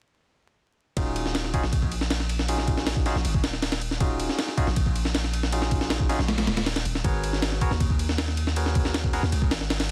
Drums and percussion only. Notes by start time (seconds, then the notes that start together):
0.97 kick, ride
1.16 ride
1.26 snare
1.35 snare, ride
1.44 snare
1.54 kick, ride
1.63 snare
1.73 kick, ride
1.82 kick
1.92 ride
2.01 snare
2.10 snare, ride
2.20 snare
2.29 ride
2.39 snare
2.48 ride
2.58 snare
2.68 kick, ride
2.77 snare
2.87 snare, ride
2.96 kick
3.06 snare, ride
3.15 snare
3.25 ride
3.34 kick
3.44 snare, ride
3.53 snare
3.62 snare, ride
3.72 snare, ride
3.81 ride
3.91 snare
4.00 kick, ride
4.20 ride
4.29 snare
4.39 snare, ride
4.48 snare
4.58 kick, ride
4.67 snare
4.76 kick, ride
4.86 kick
4.96 ride
5.05 snare
5.15 snare, ride
5.24 snare
5.33 ride
5.43 snare
5.52 ride
5.62 snare
5.71 kick, ride
5.81 snare
5.90 snare, ride
6.00 kick
6.10 snare, ride
6.19 snare
6.28 snare, ride
6.38 snare, ride
6.47 snare, ride
6.57 snare, ride
6.66 snare, ride
6.76 snare, ride
6.85 ride
6.95 snare
7.04 kick, ride
7.24 ride
7.33 snare
7.42 snare, ride
7.52 snare
7.61 kick, ride
7.71 snare
7.80 kick, ride
7.90 kick
7.99 ride
8.09 snare
8.18 snare, ride
8.28 snare
8.37 ride
8.47 snare
8.56 ride
8.66 snare
8.75 kick, ride
8.85 snare
8.94 snare, ride
9.04 kick
9.13 snare, ride
9.23 snare
9.32 ride
9.42 kick
9.51 snare, ride
9.61 snare
9.70 snare, ride
9.80 snare, ride